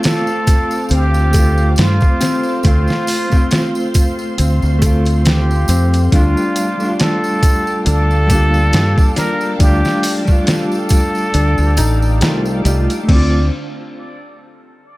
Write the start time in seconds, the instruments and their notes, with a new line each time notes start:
Already playing: clean electric guitar A3 C4 F4, felt piano C4, string machine C5 F5 D6
0.03 felt piano F4, muted trumpet A4, snare, closed hi-hat, tambourine
0.27 tambourine
0.47 kick, closed hi-hat, tambourine
0.71 tambourine
0.89 fingered electric bass D2, felt piano C4, closed hi-hat, tambourine
0.94 muted trumpet G4
1.14 tambourine
1.31 clean electric guitar A3, felt piano A4, kick, closed hi-hat, tambourine
1.35 clean electric guitar C4 F4
1.58 tambourine
1.76 fingered electric bass G2, snare, closed hi-hat, tambourine
1.81 muted trumpet F4
2.01 kick, tambourine
2.20 felt piano C4, snare, closed hi-hat, tambourine
2.43 tambourine
2.63 fingered electric bass D2, clean electric guitar A3 C4, felt piano C4, string machine C6, kick, closed hi-hat, tambourine
2.67 clean electric guitar F4, muted trumpet F4
2.88 snare, tambourine
3.07 open hi-hat, tambourine
3.30 clean electric guitar A3 C4, kick, tambourine
3.37 clean electric guitar F4
3.51 felt piano F4, snare, closed hi-hat, tambourine
3.75 tambourine
3.94 kick, closed hi-hat, tambourine
4.19 tambourine
4.38 fingered electric bass D2, felt piano C4, closed hi-hat, tambourine
4.62 fingered electric bass D2, tambourine
4.79 clean electric guitar A3, felt piano A4, kick, closed hi-hat, tambourine
4.83 clean electric guitar C4 F4
5.05 closed hi-hat, tambourine
5.25 muted trumpet G4, snare, closed hi-hat, tambourine
5.51 tambourine
5.68 fingered electric bass F2, felt piano C4, closed hi-hat, tambourine
5.93 closed hi-hat, tambourine
6.11 fingered electric bass D2, clean electric guitar G3 A3 D4, felt piano D4, muted trumpet F4, string machine F5 G5 A5 D6, kick, closed hi-hat, tambourine
6.15 clean electric guitar F4
6.37 tambourine
6.56 closed hi-hat, tambourine
6.77 clean electric guitar G3 A3, tambourine
6.82 clean electric guitar D4 F4
6.99 felt piano F4, muted trumpet A4, snare, closed hi-hat, tambourine
7.24 tambourine
7.43 kick, closed hi-hat, tambourine
7.67 tambourine
7.85 fingered electric bass D2, felt piano D4, muted trumpet A4, closed hi-hat, tambourine
8.11 tambourine
8.27 clean electric guitar G3 A#3, felt piano G4, kick, closed hi-hat, tambourine
8.32 clean electric guitar D4 F4
8.54 tambourine
8.73 fingered electric bass G2, snare, closed hi-hat, tambourine
8.98 kick, tambourine
9.16 felt piano D4, muted trumpet A#4, snare, closed hi-hat, tambourine
9.41 tambourine
9.59 fingered electric bass D2, clean electric guitar G3 A3 D4, felt piano D4, muted trumpet G4, kick, closed hi-hat, tambourine
9.63 clean electric guitar F4
9.85 snare, tambourine
10.03 open hi-hat, tambourine
10.25 clean electric guitar G3 A3, kick, tambourine
10.30 clean electric guitar D4 F4
10.47 felt piano F4, muted trumpet A4, snare, closed hi-hat, tambourine
10.72 tambourine
10.89 kick, closed hi-hat, tambourine
11.15 tambourine
11.34 fingered electric bass D2, felt piano D4, closed hi-hat, tambourine
11.58 fingered electric bass D2, tambourine
11.77 fingered electric bass A1, felt piano D#4, closed hi-hat, tambourine
12.02 tambourine
12.21 fingered electric bass C2, clean electric guitar G3 A3 F4 D5, felt piano D#4, snare, closed hi-hat, tambourine
12.45 tambourine
12.64 fingered electric bass C2, clean electric guitar G3 A3 F4 D5, felt piano G4, closed hi-hat, tambourine
12.90 closed hi-hat, tambourine
13.03 clean electric guitar A3
13.08 fingered electric bass D2, felt piano C4, clean electric guitar C4, string machine D4 C5 F5, muted trumpet D5, kick, crash
13.15 clean electric guitar F4